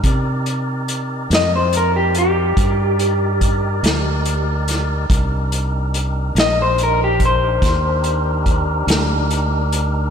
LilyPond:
<<
  \new Staff \with { instrumentName = "Clean electric guitar" } { \time 12/8 \key c \minor \tempo 4. = 47 r4. ees''16 c''16 bes'16 g'16 g'2. r8 | r4. ees''16 c''16 bes'16 g'16 c''2. r8 | }
  \new Staff \with { instrumentName = "Tonewheel organ" } { \time 12/8 \key c \minor <ees' g' bes' d''>1. | <d' ees' g' bes'>1. | }
  \new Staff \with { instrumentName = "Fretless electric bass" } { \clef bass \time 12/8 \key c \minor c4. f,4. g,4. d,4. | c,4. bes,,4. ees,4. d,4. | }
  \new DrumStaff \with { instrumentName = "Drums" } \drummode { \time 12/8 <hh bd>8 hh8 hh8 <hh sn>8 hh8 hh8 <hh bd>8 hh8 <hh bd>8 <hh sn>8 hh8 <hh sn>8 | <hh bd>8 hh8 hh8 <hh sn>8 hh8 <hh bd>8 <hh bd sn>8 hh8 <hh bd>8 <hh sn>8 hh8 hh8 | }
>>